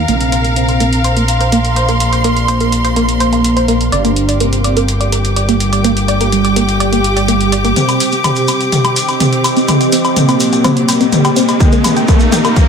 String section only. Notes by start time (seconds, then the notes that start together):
Already playing: A#4 F5
0.95 C6
3.92 G4
4.34 D6
4.76 G5
7.76 C4
11.60 D#4
11.97 A#4
12.19 F5